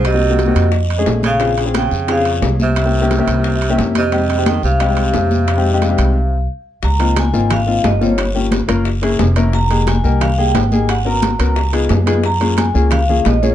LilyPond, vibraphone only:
\new Staff \with { instrumentName = "Vibraphone" } { \time 4/4 \key f \minor \tempo 4 = 177 ees''2. r8 f''8~ | f''8 r8 g''4 f''4 r8 e''8~ | e''2.~ e''8 ees''8~ | ees''4 g''8 f''2~ f''8~ |
f''2. r4 | bes''4 aes''4 f''4 ees''8 des''8~ | des''8 r2. r8 | bes''4 aes''4 f''8 g''4 aes''8 |
ges''8 bes''2 r4. | bes''4 aes''4 f''4 ees''8 des''8 | }